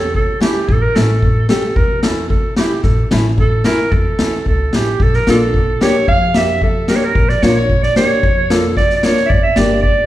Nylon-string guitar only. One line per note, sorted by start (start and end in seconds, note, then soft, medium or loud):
0.40 0.55 A3 medium
0.40 0.55 C#4 soft
0.40 0.55 E4 medium
0.95 1.09 A3 medium
0.95 1.09 C#4 medium
0.95 1.10 E4 medium
1.49 1.63 A3 medium
1.49 1.63 C#4 medium
1.49 1.64 G4 medium
2.03 2.17 A3 medium
2.03 2.17 C#4 medium
2.03 2.18 E4 medium
2.58 2.71 A3 medium
2.58 2.71 C#4 medium
2.58 2.72 E4 medium
3.11 3.25 A3 medium
3.11 3.25 C#4 medium
3.11 3.25 E4 medium
3.65 3.79 A3 medium
3.65 3.79 C#4 medium
3.65 3.79 E4 medium
4.19 4.33 A3 medium
4.19 4.33 C#4 medium
4.19 4.33 E4 medium
4.73 4.87 A3 soft
4.73 4.87 C#4 soft
4.73 4.87 E4 medium
5.27 5.41 A#3 medium
5.27 5.41 D4 medium
5.27 5.41 F4 medium
5.81 5.94 A#3 medium
5.81 5.95 D4 medium
5.81 5.95 G4 medium
6.34 6.48 A#3 soft
6.34 6.49 D4 soft
6.34 6.49 G4 medium
6.89 7.03 A#3 soft
6.89 7.03 D4 medium
6.89 7.03 G4 medium
7.43 7.56 A#3 medium
7.43 7.56 D4 medium
7.43 7.57 F4 medium
7.97 8.10 A#3 medium
7.97 8.10 D4 medium
7.97 8.11 G4 medium
8.50 8.63 A#3 medium
8.50 8.64 D4 medium
8.50 8.64 F4 medium
9.03 9.17 A#3 medium
9.03 9.17 D4 medium
9.03 9.17 F4 medium
9.57 9.71 A#3 medium
9.57 9.71 D4 medium
9.57 9.71 G4 medium